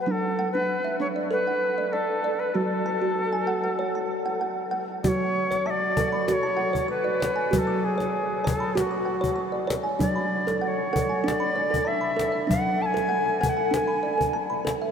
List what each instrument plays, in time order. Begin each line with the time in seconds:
0.00 native american-style wooden flute B4
0.06 kalimba F#3 D4, native american-style wooden flute B4
0.11 native american-style wooden flute A4
0.39 kalimba F#5
0.52 kalimba D4, native american-style wooden flute B4
0.85 kalimba E5
1.00 kalimba D4, native american-style wooden flute C#5
1.16 kalimba D5
1.31 kalimba A4, native american-style wooden flute B4
1.47 kalimba F#5
1.78 kalimba D5
1.93 native american-style wooden flute A4, kalimba D5
2.24 kalimba D5
2.39 native american-style wooden flute B4
2.55 kalimba F#3 F#4, native american-style wooden flute A4
2.86 kalimba A5
3.02 kalimba F#4
3.33 kalimba G#5
3.47 kalimba F#5
3.64 kalimba F#5
3.79 kalimba C#5
3.95 kalimba A5
4.26 kalimba F#5
4.41 kalimba F#5
4.71 kalimba F#5
5.03 kalimba F#3 F#4, native american-style wooden flute D5, cajon bass
5.08 native american-style wooden flute C#5
5.51 kalimba C#5, cajon slap
5.66 native american-style wooden flute E5, kalimba A5, cajon slap
5.70 native american-style wooden flute D5
5.97 kalimba A4 A5, cajon bass
6.12 kalimba B5, cajon slap
6.28 kalimba F#4, native american-style wooden flute D5, cajon slap
6.33 native american-style wooden flute C#5
6.43 kalimba A5
6.57 kalimba F#5
6.73 kalimba C#5, cajon bass
6.88 native american-style wooden flute B4, kalimba C#6
7.04 kalimba D5
7.20 kalimba C#5, cajon slap
7.36 kalimba G#5
7.51 kalimba F#3 F#4, native american-style wooden flute B4, cajon bass
7.58 native american-style wooden flute A4
7.67 kalimba D6
7.85 native american-style wooden flute G#4
7.98 kalimba C#5, cajon slap
8.16 cajon slap
8.44 native american-style wooden flute A4, kalimba C#5 A5, cajon bass
8.60 kalimba B5, cajon slap
8.75 kalimba F#4, cajon slap
8.79 native american-style wooden flute F#4
8.91 kalimba D6
9.05 kalimba F#5
9.21 kalimba C#5, cajon bass
9.36 kalimba C#6
9.52 kalimba D5
9.67 kalimba C#5, cajon slap
9.83 kalimba G#5
9.99 kalimba F#3 D4, native american-style wooden flute D5, cajon bass
10.16 kalimba B5
10.47 kalimba A4, cajon slap
10.61 native american-style wooden flute D5, kalimba F#5, cajon slap
10.68 native american-style wooden flute C#5
10.93 kalimba A4 F#5, cajon bass
11.09 kalimba G#5, cajon slap
11.24 kalimba D4, native american-style wooden flute D5
11.28 cajon slap
11.40 kalimba B5
11.56 kalimba D5
11.70 kalimba A4, cajon bass
11.85 native american-style wooden flute E5, kalimba A5
12.01 kalimba B5
12.16 kalimba A4, cajon slap
12.32 kalimba E5
12.47 kalimba F#3 D4, native american-style wooden flute F#5, cajon bass
12.66 cajon slap
12.81 native american-style wooden flute A5, cajon slap
12.86 native american-style wooden flute G#5
12.94 kalimba A4, cajon slap
13.09 kalimba F#5
13.28 cajon slap
13.41 kalimba A4 F#5, native american-style wooden flute G#5, cajon bass
13.49 native american-style wooden flute F#5
13.57 kalimba G#5, cajon slap
13.71 kalimba D4, native american-style wooden flute G#5, cajon slap
13.87 kalimba B5
14.03 kalimba D5
14.18 kalimba A4, cajon bass
14.33 kalimba A5
14.50 kalimba B5, cajon slap
14.65 kalimba A4, cajon slap
14.82 kalimba E5, cajon slap